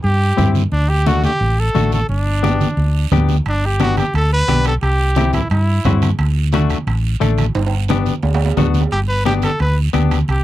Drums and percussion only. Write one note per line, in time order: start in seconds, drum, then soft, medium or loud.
0.04 high conga soft
0.04 long guiro medium
0.38 high conga medium
0.38 low conga medium
0.38 short guiro medium
0.55 high conga medium
0.55 short guiro medium
0.72 long guiro medium
0.89 high conga soft
1.06 high conga loud
1.06 short guiro medium
1.24 high conga medium
1.24 short guiro medium
1.40 high conga soft
1.40 long guiro medium
1.75 high conga medium
1.75 short guiro medium
1.92 high conga medium
1.92 short guiro medium
2.09 long guiro medium
2.27 high conga soft
2.44 high conga medium
2.44 short guiro medium
2.61 high conga medium
2.61 short guiro medium
2.77 high conga soft
2.77 long guiro medium
3.11 high conga medium
3.11 low conga medium
3.11 short guiro medium
3.28 high conga medium
3.28 short guiro medium
3.46 high timbale medium
3.46 long guiro medium
3.63 high conga soft
3.80 high conga medium
3.80 high timbale medium
3.80 short guiro medium
3.97 high conga medium
3.97 high timbale medium
3.97 short guiro medium
4.14 high conga soft
4.14 high timbale medium
4.14 long guiro medium
4.47 high conga medium
4.47 high timbale medium
4.47 short guiro medium
4.65 high timbale medium
4.65 short guiro medium
4.81 high timbale medium
4.81 long guiro medium
5.00 high conga soft
5.15 high conga medium
5.15 high timbale medium
5.15 short guiro medium
5.33 high conga medium
5.33 low conga medium
5.33 high timbale medium
5.33 short guiro medium
5.50 high conga soft
5.50 high timbale medium
5.50 long guiro medium
5.84 high conga medium
5.84 low conga medium
5.84 high timbale medium
5.84 low timbale medium
5.84 short guiro medium
6.02 high conga medium
6.02 high timbale medium
6.02 short guiro medium
6.19 high timbale medium
6.19 long guiro medium
6.37 high conga soft
6.52 high conga loud
6.52 high timbale medium
6.52 short guiro medium
6.70 high conga medium
6.70 high timbale medium
6.70 short guiro medium
6.87 high conga soft
6.87 high timbale medium
6.87 long guiro medium
7.21 high conga medium
7.21 high timbale medium
7.21 short guiro medium
7.38 high conga medium
7.38 high timbale medium
7.38 short guiro medium
7.55 high timbale medium
7.55 long guiro medium
7.67 high timbale medium
7.73 high conga soft
7.88 high conga medium
7.88 high timbale medium
7.88 short guiro medium
8.06 high conga medium
8.06 short guiro medium
8.23 high conga soft
8.23 low timbale medium
8.23 long guiro medium
8.34 low timbale loud
8.46 low timbale medium
8.57 high conga medium
8.57 low conga medium
8.57 low timbale medium
8.57 short guiro medium
8.74 high conga medium
8.74 short guiro medium
8.80 low timbale medium
8.91 high timbale medium
8.91 long guiro medium
9.09 high conga soft
9.25 high conga medium
9.25 high timbale medium
9.25 short guiro medium
9.42 high conga medium
9.42 high timbale medium
9.42 short guiro medium
9.59 high conga soft
9.59 high timbale medium
9.59 long guiro medium
9.93 high conga medium
9.93 high timbale medium
9.93 short guiro medium
10.11 high conga medium
10.11 high timbale medium
10.11 short guiro medium
10.28 high timbale medium
10.28 long guiro medium